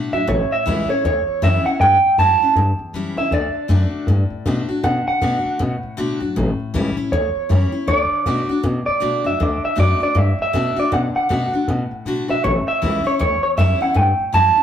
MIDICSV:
0, 0, Header, 1, 5, 480
1, 0, Start_track
1, 0, Key_signature, 2, "major"
1, 0, Tempo, 379987
1, 351, Time_signature, 4, 2, 24, 8
1, 18479, End_track
2, 0, Start_track
2, 0, Title_t, "Clean electric guitar"
2, 0, Program_c, 0, 27
2, 0, Note_on_c, 0, 78, 80
2, 160, Note_off_c, 0, 78, 0
2, 165, Note_on_c, 0, 76, 88
2, 357, Note_off_c, 0, 76, 0
2, 361, Note_on_c, 0, 73, 85
2, 659, Note_off_c, 0, 73, 0
2, 660, Note_on_c, 0, 76, 88
2, 1099, Note_off_c, 0, 76, 0
2, 1138, Note_on_c, 0, 73, 94
2, 1323, Note_off_c, 0, 73, 0
2, 1337, Note_on_c, 0, 73, 101
2, 1814, Note_on_c, 0, 76, 105
2, 1818, Note_off_c, 0, 73, 0
2, 2090, Note_off_c, 0, 76, 0
2, 2095, Note_on_c, 0, 78, 98
2, 2159, Note_off_c, 0, 78, 0
2, 2282, Note_on_c, 0, 79, 112
2, 2724, Note_off_c, 0, 79, 0
2, 2766, Note_on_c, 0, 81, 97
2, 3205, Note_off_c, 0, 81, 0
2, 4018, Note_on_c, 0, 76, 89
2, 4203, Note_off_c, 0, 76, 0
2, 4212, Note_on_c, 0, 74, 93
2, 6071, Note_off_c, 0, 74, 0
2, 6116, Note_on_c, 0, 78, 100
2, 6399, Note_off_c, 0, 78, 0
2, 6414, Note_on_c, 0, 78, 105
2, 8996, Note_on_c, 0, 73, 93
2, 9073, Note_off_c, 0, 78, 0
2, 9956, Note_on_c, 0, 74, 91
2, 9982, Note_off_c, 0, 73, 0
2, 11180, Note_off_c, 0, 74, 0
2, 11195, Note_on_c, 0, 74, 78
2, 11646, Note_off_c, 0, 74, 0
2, 11704, Note_on_c, 0, 76, 80
2, 11909, Note_off_c, 0, 76, 0
2, 11909, Note_on_c, 0, 74, 83
2, 12184, Note_off_c, 0, 74, 0
2, 12189, Note_on_c, 0, 76, 73
2, 12352, Note_off_c, 0, 76, 0
2, 12376, Note_on_c, 0, 74, 94
2, 12638, Note_off_c, 0, 74, 0
2, 12672, Note_on_c, 0, 74, 83
2, 12851, Note_off_c, 0, 74, 0
2, 12851, Note_on_c, 0, 76, 92
2, 13144, Note_off_c, 0, 76, 0
2, 13164, Note_on_c, 0, 76, 88
2, 13632, Note_off_c, 0, 76, 0
2, 13638, Note_on_c, 0, 74, 73
2, 13807, Note_off_c, 0, 74, 0
2, 13812, Note_on_c, 0, 78, 94
2, 13889, Note_off_c, 0, 78, 0
2, 14097, Note_on_c, 0, 78, 92
2, 15538, Note_off_c, 0, 78, 0
2, 15543, Note_on_c, 0, 76, 88
2, 15711, Note_off_c, 0, 76, 0
2, 15716, Note_on_c, 0, 73, 92
2, 15794, Note_off_c, 0, 73, 0
2, 16017, Note_on_c, 0, 76, 96
2, 16502, Note_off_c, 0, 76, 0
2, 16507, Note_on_c, 0, 73, 95
2, 16570, Note_off_c, 0, 73, 0
2, 16687, Note_on_c, 0, 73, 99
2, 16952, Note_off_c, 0, 73, 0
2, 16967, Note_on_c, 0, 73, 94
2, 17030, Note_off_c, 0, 73, 0
2, 17153, Note_on_c, 0, 76, 97
2, 17454, Note_off_c, 0, 76, 0
2, 17459, Note_on_c, 0, 78, 93
2, 17639, Note_off_c, 0, 78, 0
2, 17639, Note_on_c, 0, 79, 98
2, 18112, Note_off_c, 0, 79, 0
2, 18117, Note_on_c, 0, 81, 100
2, 18479, Note_off_c, 0, 81, 0
2, 18479, End_track
3, 0, Start_track
3, 0, Title_t, "Steel-string acoustic guitar"
3, 0, Program_c, 1, 25
3, 0, Note_on_c, 1, 45, 92
3, 0, Note_on_c, 1, 50, 80
3, 0, Note_on_c, 1, 57, 81
3, 0, Note_on_c, 1, 62, 94
3, 0, Note_on_c, 1, 66, 91
3, 145, Note_off_c, 1, 66, 0
3, 158, Note_off_c, 1, 50, 0
3, 160, Note_on_c, 1, 66, 53
3, 161, Note_off_c, 1, 57, 0
3, 165, Note_off_c, 1, 62, 0
3, 192, Note_on_c, 1, 62, 47
3, 316, Note_off_c, 1, 45, 0
3, 342, Note_off_c, 1, 66, 0
3, 347, Note_on_c, 1, 45, 92
3, 357, Note_off_c, 1, 62, 0
3, 829, Note_on_c, 1, 52, 98
3, 842, Note_on_c, 1, 55, 93
3, 848, Note_on_c, 1, 61, 93
3, 851, Note_on_c, 1, 64, 102
3, 1111, Note_off_c, 1, 64, 0
3, 1112, Note_off_c, 1, 52, 0
3, 1118, Note_off_c, 1, 55, 0
3, 1121, Note_off_c, 1, 61, 0
3, 1127, Note_on_c, 1, 64, 60
3, 1149, Note_on_c, 1, 61, 50
3, 1272, Note_off_c, 1, 45, 0
3, 1305, Note_off_c, 1, 64, 0
3, 1316, Note_off_c, 1, 61, 0
3, 1326, Note_on_c, 1, 40, 88
3, 1794, Note_on_c, 1, 52, 98
3, 1806, Note_on_c, 1, 55, 91
3, 1817, Note_on_c, 1, 61, 87
3, 1817, Note_on_c, 1, 64, 93
3, 2075, Note_off_c, 1, 52, 0
3, 2081, Note_off_c, 1, 55, 0
3, 2083, Note_off_c, 1, 64, 0
3, 2086, Note_off_c, 1, 61, 0
3, 2098, Note_on_c, 1, 64, 57
3, 2123, Note_on_c, 1, 61, 52
3, 2242, Note_off_c, 1, 40, 0
3, 2270, Note_off_c, 1, 64, 0
3, 2283, Note_off_c, 1, 61, 0
3, 2292, Note_on_c, 1, 45, 91
3, 2756, Note_on_c, 1, 52, 85
3, 2770, Note_on_c, 1, 55, 89
3, 2778, Note_on_c, 1, 61, 96
3, 2783, Note_on_c, 1, 64, 89
3, 3035, Note_off_c, 1, 52, 0
3, 3039, Note_off_c, 1, 64, 0
3, 3042, Note_off_c, 1, 55, 0
3, 3046, Note_off_c, 1, 61, 0
3, 3054, Note_on_c, 1, 64, 61
3, 3069, Note_on_c, 1, 61, 52
3, 3204, Note_off_c, 1, 45, 0
3, 3228, Note_off_c, 1, 64, 0
3, 3236, Note_off_c, 1, 61, 0
3, 3241, Note_on_c, 1, 40, 83
3, 3714, Note_on_c, 1, 52, 84
3, 3729, Note_on_c, 1, 61, 81
3, 3732, Note_on_c, 1, 55, 92
3, 3742, Note_on_c, 1, 64, 100
3, 3990, Note_off_c, 1, 64, 0
3, 3994, Note_off_c, 1, 52, 0
3, 4002, Note_off_c, 1, 61, 0
3, 4003, Note_off_c, 1, 55, 0
3, 4005, Note_on_c, 1, 64, 53
3, 4029, Note_on_c, 1, 61, 50
3, 4158, Note_off_c, 1, 40, 0
3, 4184, Note_off_c, 1, 64, 0
3, 4196, Note_off_c, 1, 61, 0
3, 4196, Note_on_c, 1, 50, 84
3, 4636, Note_off_c, 1, 50, 0
3, 4651, Note_on_c, 1, 50, 83
3, 4659, Note_on_c, 1, 57, 100
3, 4671, Note_on_c, 1, 62, 100
3, 4677, Note_on_c, 1, 66, 101
3, 5122, Note_off_c, 1, 50, 0
3, 5126, Note_off_c, 1, 57, 0
3, 5132, Note_off_c, 1, 62, 0
3, 5135, Note_off_c, 1, 66, 0
3, 5155, Note_on_c, 1, 45, 91
3, 5629, Note_on_c, 1, 50, 88
3, 5636, Note_on_c, 1, 57, 81
3, 5647, Note_on_c, 1, 62, 91
3, 5648, Note_on_c, 1, 66, 102
3, 5904, Note_off_c, 1, 66, 0
3, 5912, Note_off_c, 1, 50, 0
3, 5915, Note_off_c, 1, 57, 0
3, 5919, Note_on_c, 1, 66, 63
3, 5920, Note_off_c, 1, 62, 0
3, 5949, Note_on_c, 1, 62, 46
3, 6075, Note_off_c, 1, 45, 0
3, 6101, Note_off_c, 1, 66, 0
3, 6108, Note_on_c, 1, 50, 93
3, 6115, Note_off_c, 1, 62, 0
3, 6572, Note_off_c, 1, 50, 0
3, 6587, Note_on_c, 1, 50, 84
3, 6594, Note_on_c, 1, 57, 88
3, 6601, Note_on_c, 1, 62, 91
3, 6609, Note_on_c, 1, 66, 95
3, 7050, Note_off_c, 1, 50, 0
3, 7053, Note_off_c, 1, 57, 0
3, 7057, Note_off_c, 1, 62, 0
3, 7061, Note_off_c, 1, 66, 0
3, 7065, Note_on_c, 1, 45, 96
3, 7541, Note_on_c, 1, 50, 97
3, 7551, Note_on_c, 1, 57, 84
3, 7555, Note_on_c, 1, 62, 105
3, 7561, Note_on_c, 1, 66, 91
3, 7820, Note_off_c, 1, 66, 0
3, 7828, Note_off_c, 1, 50, 0
3, 7832, Note_off_c, 1, 57, 0
3, 7834, Note_off_c, 1, 62, 0
3, 7835, Note_on_c, 1, 66, 59
3, 7861, Note_on_c, 1, 62, 49
3, 7990, Note_off_c, 1, 45, 0
3, 8019, Note_off_c, 1, 66, 0
3, 8032, Note_off_c, 1, 62, 0
3, 8036, Note_on_c, 1, 45, 91
3, 8511, Note_on_c, 1, 52, 89
3, 8519, Note_on_c, 1, 55, 96
3, 8525, Note_on_c, 1, 61, 96
3, 8534, Note_on_c, 1, 64, 97
3, 8788, Note_off_c, 1, 64, 0
3, 8793, Note_off_c, 1, 52, 0
3, 8797, Note_off_c, 1, 55, 0
3, 8799, Note_off_c, 1, 61, 0
3, 8804, Note_on_c, 1, 64, 66
3, 8816, Note_on_c, 1, 61, 53
3, 8956, Note_off_c, 1, 45, 0
3, 8983, Note_off_c, 1, 64, 0
3, 8989, Note_off_c, 1, 61, 0
3, 9463, Note_on_c, 1, 52, 79
3, 9471, Note_on_c, 1, 55, 85
3, 9481, Note_on_c, 1, 61, 93
3, 9492, Note_on_c, 1, 64, 82
3, 9739, Note_off_c, 1, 64, 0
3, 9749, Note_off_c, 1, 52, 0
3, 9753, Note_off_c, 1, 55, 0
3, 9754, Note_on_c, 1, 64, 59
3, 9758, Note_off_c, 1, 61, 0
3, 9776, Note_on_c, 1, 61, 44
3, 9939, Note_off_c, 1, 64, 0
3, 9948, Note_on_c, 1, 50, 88
3, 9949, Note_off_c, 1, 61, 0
3, 10418, Note_off_c, 1, 50, 0
3, 10433, Note_on_c, 1, 50, 86
3, 10442, Note_on_c, 1, 57, 94
3, 10446, Note_on_c, 1, 62, 86
3, 10453, Note_on_c, 1, 66, 84
3, 10711, Note_off_c, 1, 66, 0
3, 10714, Note_off_c, 1, 50, 0
3, 10719, Note_off_c, 1, 57, 0
3, 10721, Note_off_c, 1, 62, 0
3, 10726, Note_on_c, 1, 66, 67
3, 10748, Note_on_c, 1, 62, 58
3, 10904, Note_off_c, 1, 66, 0
3, 10906, Note_on_c, 1, 45, 86
3, 10915, Note_off_c, 1, 62, 0
3, 11371, Note_on_c, 1, 50, 81
3, 11379, Note_on_c, 1, 57, 86
3, 11389, Note_on_c, 1, 62, 90
3, 11391, Note_on_c, 1, 66, 91
3, 11661, Note_off_c, 1, 66, 0
3, 11663, Note_off_c, 1, 50, 0
3, 11667, Note_off_c, 1, 57, 0
3, 11672, Note_off_c, 1, 62, 0
3, 11676, Note_on_c, 1, 66, 60
3, 11697, Note_on_c, 1, 62, 46
3, 11832, Note_off_c, 1, 45, 0
3, 11860, Note_off_c, 1, 66, 0
3, 11870, Note_off_c, 1, 62, 0
3, 11873, Note_on_c, 1, 50, 88
3, 12307, Note_off_c, 1, 50, 0
3, 12323, Note_on_c, 1, 50, 86
3, 12332, Note_on_c, 1, 57, 84
3, 12338, Note_on_c, 1, 62, 90
3, 12350, Note_on_c, 1, 66, 105
3, 12618, Note_off_c, 1, 66, 0
3, 12619, Note_off_c, 1, 50, 0
3, 12624, Note_off_c, 1, 57, 0
3, 12627, Note_off_c, 1, 62, 0
3, 12633, Note_on_c, 1, 66, 63
3, 12658, Note_on_c, 1, 62, 53
3, 12818, Note_off_c, 1, 66, 0
3, 12818, Note_on_c, 1, 45, 85
3, 12831, Note_off_c, 1, 62, 0
3, 13305, Note_on_c, 1, 50, 97
3, 13314, Note_on_c, 1, 57, 90
3, 13319, Note_on_c, 1, 62, 88
3, 13326, Note_on_c, 1, 66, 93
3, 13580, Note_off_c, 1, 66, 0
3, 13590, Note_off_c, 1, 50, 0
3, 13595, Note_off_c, 1, 57, 0
3, 13595, Note_on_c, 1, 66, 65
3, 13597, Note_off_c, 1, 62, 0
3, 13622, Note_on_c, 1, 62, 48
3, 13748, Note_off_c, 1, 45, 0
3, 13780, Note_off_c, 1, 66, 0
3, 13792, Note_on_c, 1, 50, 85
3, 13793, Note_off_c, 1, 62, 0
3, 14247, Note_off_c, 1, 50, 0
3, 14262, Note_on_c, 1, 50, 88
3, 14274, Note_on_c, 1, 57, 87
3, 14281, Note_on_c, 1, 62, 92
3, 14286, Note_on_c, 1, 66, 101
3, 14549, Note_off_c, 1, 50, 0
3, 14554, Note_off_c, 1, 66, 0
3, 14555, Note_off_c, 1, 57, 0
3, 14558, Note_off_c, 1, 62, 0
3, 14570, Note_on_c, 1, 66, 59
3, 14587, Note_on_c, 1, 62, 58
3, 14747, Note_off_c, 1, 66, 0
3, 14755, Note_off_c, 1, 62, 0
3, 14760, Note_on_c, 1, 45, 85
3, 15234, Note_on_c, 1, 50, 83
3, 15247, Note_on_c, 1, 57, 93
3, 15251, Note_on_c, 1, 62, 88
3, 15258, Note_on_c, 1, 66, 97
3, 15500, Note_off_c, 1, 66, 0
3, 15514, Note_off_c, 1, 50, 0
3, 15515, Note_on_c, 1, 66, 60
3, 15521, Note_off_c, 1, 57, 0
3, 15523, Note_off_c, 1, 62, 0
3, 15541, Note_on_c, 1, 62, 50
3, 15678, Note_off_c, 1, 45, 0
3, 15699, Note_off_c, 1, 66, 0
3, 15712, Note_off_c, 1, 62, 0
3, 15715, Note_on_c, 1, 45, 80
3, 16191, Note_on_c, 1, 52, 91
3, 16193, Note_on_c, 1, 55, 87
3, 16198, Note_on_c, 1, 61, 93
3, 16210, Note_on_c, 1, 64, 92
3, 16458, Note_off_c, 1, 64, 0
3, 16473, Note_off_c, 1, 52, 0
3, 16473, Note_on_c, 1, 64, 66
3, 16474, Note_off_c, 1, 55, 0
3, 16477, Note_off_c, 1, 61, 0
3, 16499, Note_on_c, 1, 61, 54
3, 16636, Note_off_c, 1, 45, 0
3, 16658, Note_off_c, 1, 64, 0
3, 16667, Note_on_c, 1, 40, 96
3, 16671, Note_off_c, 1, 61, 0
3, 17145, Note_on_c, 1, 52, 78
3, 17149, Note_on_c, 1, 55, 80
3, 17161, Note_on_c, 1, 61, 97
3, 17166, Note_on_c, 1, 64, 95
3, 17423, Note_off_c, 1, 64, 0
3, 17430, Note_off_c, 1, 52, 0
3, 17432, Note_off_c, 1, 55, 0
3, 17437, Note_off_c, 1, 61, 0
3, 17438, Note_on_c, 1, 64, 64
3, 17463, Note_on_c, 1, 61, 45
3, 17591, Note_off_c, 1, 40, 0
3, 17614, Note_on_c, 1, 45, 81
3, 17620, Note_off_c, 1, 64, 0
3, 17633, Note_off_c, 1, 61, 0
3, 18096, Note_on_c, 1, 52, 83
3, 18110, Note_on_c, 1, 55, 105
3, 18117, Note_on_c, 1, 61, 108
3, 18122, Note_on_c, 1, 64, 98
3, 18385, Note_off_c, 1, 52, 0
3, 18390, Note_off_c, 1, 64, 0
3, 18392, Note_off_c, 1, 55, 0
3, 18395, Note_off_c, 1, 61, 0
3, 18405, Note_on_c, 1, 64, 63
3, 18425, Note_on_c, 1, 61, 53
3, 18479, Note_off_c, 1, 45, 0
3, 18479, Note_off_c, 1, 61, 0
3, 18479, Note_off_c, 1, 64, 0
3, 18479, End_track
4, 0, Start_track
4, 0, Title_t, "Upright bass"
4, 0, Program_c, 2, 32
4, 159, Note_on_c, 2, 42, 95
4, 283, Note_off_c, 2, 42, 0
4, 347, Note_on_c, 2, 33, 104
4, 541, Note_off_c, 2, 33, 0
4, 841, Note_on_c, 2, 37, 85
4, 1030, Note_off_c, 2, 37, 0
4, 1319, Note_on_c, 2, 38, 97
4, 1509, Note_off_c, 2, 38, 0
4, 1797, Note_on_c, 2, 42, 98
4, 1988, Note_off_c, 2, 42, 0
4, 2273, Note_on_c, 2, 43, 97
4, 2465, Note_off_c, 2, 43, 0
4, 2754, Note_on_c, 2, 42, 91
4, 2946, Note_off_c, 2, 42, 0
4, 3227, Note_on_c, 2, 43, 91
4, 3421, Note_off_c, 2, 43, 0
4, 3705, Note_on_c, 2, 42, 90
4, 3899, Note_off_c, 2, 42, 0
4, 3998, Note_on_c, 2, 37, 98
4, 4122, Note_off_c, 2, 37, 0
4, 4182, Note_on_c, 2, 38, 103
4, 4377, Note_off_c, 2, 38, 0
4, 4660, Note_on_c, 2, 42, 89
4, 4856, Note_off_c, 2, 42, 0
4, 5139, Note_on_c, 2, 43, 94
4, 5336, Note_off_c, 2, 43, 0
4, 5628, Note_on_c, 2, 47, 95
4, 5821, Note_off_c, 2, 47, 0
4, 6107, Note_on_c, 2, 47, 102
4, 6301, Note_off_c, 2, 47, 0
4, 6587, Note_on_c, 2, 47, 89
4, 6780, Note_off_c, 2, 47, 0
4, 7072, Note_on_c, 2, 47, 83
4, 7264, Note_off_c, 2, 47, 0
4, 7559, Note_on_c, 2, 47, 102
4, 7749, Note_off_c, 2, 47, 0
4, 7845, Note_on_c, 2, 42, 95
4, 7967, Note_off_c, 2, 42, 0
4, 8042, Note_on_c, 2, 33, 111
4, 8231, Note_off_c, 2, 33, 0
4, 8513, Note_on_c, 2, 37, 89
4, 8705, Note_off_c, 2, 37, 0
4, 8993, Note_on_c, 2, 38, 96
4, 9185, Note_off_c, 2, 38, 0
4, 9473, Note_on_c, 2, 42, 92
4, 9665, Note_off_c, 2, 42, 0
4, 9947, Note_on_c, 2, 38, 104
4, 10141, Note_off_c, 2, 38, 0
4, 10430, Note_on_c, 2, 47, 81
4, 10623, Note_off_c, 2, 47, 0
4, 10907, Note_on_c, 2, 47, 94
4, 11101, Note_off_c, 2, 47, 0
4, 11399, Note_on_c, 2, 47, 98
4, 11589, Note_off_c, 2, 47, 0
4, 11681, Note_on_c, 2, 42, 92
4, 11805, Note_off_c, 2, 42, 0
4, 11879, Note_on_c, 2, 38, 114
4, 12069, Note_off_c, 2, 38, 0
4, 12351, Note_on_c, 2, 42, 81
4, 12544, Note_off_c, 2, 42, 0
4, 12823, Note_on_c, 2, 43, 91
4, 13019, Note_off_c, 2, 43, 0
4, 13310, Note_on_c, 2, 47, 96
4, 13503, Note_off_c, 2, 47, 0
4, 13794, Note_on_c, 2, 47, 104
4, 13986, Note_off_c, 2, 47, 0
4, 14275, Note_on_c, 2, 47, 93
4, 14467, Note_off_c, 2, 47, 0
4, 14750, Note_on_c, 2, 47, 88
4, 14943, Note_off_c, 2, 47, 0
4, 15226, Note_on_c, 2, 47, 95
4, 15420, Note_off_c, 2, 47, 0
4, 15530, Note_on_c, 2, 35, 96
4, 15650, Note_off_c, 2, 35, 0
4, 15719, Note_on_c, 2, 33, 107
4, 15909, Note_off_c, 2, 33, 0
4, 16200, Note_on_c, 2, 37, 84
4, 16390, Note_off_c, 2, 37, 0
4, 16678, Note_on_c, 2, 38, 83
4, 16868, Note_off_c, 2, 38, 0
4, 17149, Note_on_c, 2, 42, 96
4, 17342, Note_off_c, 2, 42, 0
4, 17624, Note_on_c, 2, 43, 107
4, 17819, Note_off_c, 2, 43, 0
4, 18108, Note_on_c, 2, 42, 78
4, 18302, Note_off_c, 2, 42, 0
4, 18479, End_track
5, 0, Start_track
5, 0, Title_t, "Muted upright bass strokes"
5, 647, Note_on_c, 9, 29, 73
5, 774, Note_off_c, 9, 29, 0
5, 1143, Note_on_c, 9, 29, 75
5, 1270, Note_off_c, 9, 29, 0
5, 1613, Note_on_c, 9, 29, 73
5, 1739, Note_off_c, 9, 29, 0
5, 2092, Note_on_c, 9, 29, 72
5, 2218, Note_off_c, 9, 29, 0
5, 2573, Note_on_c, 9, 29, 69
5, 2700, Note_off_c, 9, 29, 0
5, 3053, Note_on_c, 9, 29, 65
5, 3179, Note_off_c, 9, 29, 0
5, 3524, Note_on_c, 9, 29, 78
5, 3650, Note_off_c, 9, 29, 0
5, 4475, Note_on_c, 9, 29, 72
5, 4602, Note_off_c, 9, 29, 0
5, 4949, Note_on_c, 9, 29, 68
5, 5076, Note_off_c, 9, 29, 0
5, 5435, Note_on_c, 9, 29, 75
5, 5561, Note_off_c, 9, 29, 0
5, 5922, Note_on_c, 9, 29, 71
5, 6048, Note_off_c, 9, 29, 0
5, 6409, Note_on_c, 9, 29, 77
5, 6536, Note_off_c, 9, 29, 0
5, 6881, Note_on_c, 9, 29, 72
5, 7008, Note_off_c, 9, 29, 0
5, 7365, Note_on_c, 9, 29, 76
5, 7492, Note_off_c, 9, 29, 0
5, 8333, Note_on_c, 9, 29, 70
5, 8459, Note_off_c, 9, 29, 0
5, 8806, Note_on_c, 9, 29, 72
5, 8932, Note_off_c, 9, 29, 0
5, 9288, Note_on_c, 9, 29, 72
5, 9414, Note_off_c, 9, 29, 0
5, 10241, Note_on_c, 9, 29, 73
5, 10367, Note_off_c, 9, 29, 0
5, 10727, Note_on_c, 9, 29, 66
5, 10853, Note_off_c, 9, 29, 0
5, 11214, Note_on_c, 9, 29, 76
5, 11341, Note_off_c, 9, 29, 0
5, 12172, Note_on_c, 9, 29, 76
5, 12299, Note_off_c, 9, 29, 0
5, 12647, Note_on_c, 9, 29, 68
5, 12773, Note_off_c, 9, 29, 0
5, 13119, Note_on_c, 9, 29, 81
5, 13246, Note_off_c, 9, 29, 0
5, 13604, Note_on_c, 9, 29, 76
5, 13730, Note_off_c, 9, 29, 0
5, 14082, Note_on_c, 9, 29, 68
5, 14209, Note_off_c, 9, 29, 0
5, 14566, Note_on_c, 9, 29, 79
5, 14693, Note_off_c, 9, 29, 0
5, 15046, Note_on_c, 9, 29, 78
5, 15173, Note_off_c, 9, 29, 0
5, 16021, Note_on_c, 9, 29, 69
5, 16147, Note_off_c, 9, 29, 0
5, 16492, Note_on_c, 9, 29, 71
5, 16618, Note_off_c, 9, 29, 0
5, 16965, Note_on_c, 9, 29, 77
5, 17091, Note_off_c, 9, 29, 0
5, 17441, Note_on_c, 9, 29, 77
5, 17568, Note_off_c, 9, 29, 0
5, 17923, Note_on_c, 9, 29, 67
5, 18049, Note_off_c, 9, 29, 0
5, 18409, Note_on_c, 9, 29, 74
5, 18479, Note_off_c, 9, 29, 0
5, 18479, End_track
0, 0, End_of_file